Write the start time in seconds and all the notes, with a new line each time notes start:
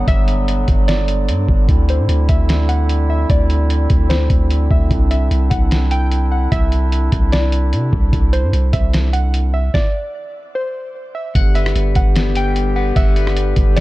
Already playing: D3 F#3 G3 B3
0.08 G1 E5, kick, closed hi-hat
0.28 closed hi-hat
0.48 closed hi-hat
0.68 G1, kick, closed hi-hat
0.88 D5, snare, closed hi-hat
1.08 closed hi-hat
1.28 G2, closed hi-hat
1.48 G1, kick
1.68 D2 G3 C4 E4, kick, closed hi-hat
1.89 C5, closed hi-hat
1.99 A2
2.09 D2, closed hi-hat
2.29 D2 E5, kick, closed hi-hat
2.49 snare, closed hi-hat
2.69 F#5, closed hi-hat
2.89 closed hi-hat
3.10 E5
3.30 D2 D5, kick, closed hi-hat
3.50 closed hi-hat
3.70 closed hi-hat
3.90 D2, kick, closed hi-hat
4.10 C5, snare, closed hi-hat
4.30 D2, kick, closed hi-hat
4.51 closed hi-hat
4.71 D2 E5, kick
4.91 C2 D4 E4, kick, closed hi-hat
5.11 E5, closed hi-hat
5.31 C2, closed hi-hat
5.50 C2 F#5, kick, closed hi-hat
5.71 snare, closed hi-hat
5.91 G5, closed hi-hat
6.12 closed hi-hat
6.32 F#5
6.52 C2 E5, kick, closed hi-hat
6.72 closed hi-hat
6.92 closed hi-hat
7.12 C2, kick, closed hi-hat
7.32 D5, snare, closed hi-hat
7.52 closed hi-hat
7.73 C3, closed hi-hat
7.93 C2, kick
8.13 C2, kick, closed hi-hat
8.33 C5, closed hi-hat
8.43 G2
8.53 C2, closed hi-hat
8.73 C2 E5, kick, closed hi-hat
8.93 snare, closed hi-hat
9.13 F#5, closed hi-hat
9.34 closed hi-hat
9.54 E5
9.74 D5, kick, snare
10.55 C5
11.15 E5
11.35 G1 D3 G3 B3 G4 F#5, kick, closed hi-hat
11.55 B4 E5, closed hi-hat
11.66 cross-stick
11.75 G1, closed hi-hat
11.95 G1 F#5, kick, closed hi-hat
12.16 B3, snare, closed hi-hat
12.35 G3 G5, closed hi-hat
12.56 closed hi-hat
12.76 B4 F#5
12.96 G1 E5 F#5, kick, closed hi-hat
13.16 B4, closed hi-hat
13.27 cross-stick
13.37 closed hi-hat
13.56 G1, kick, closed hi-hat
13.76 B3 D5, closed hi-hat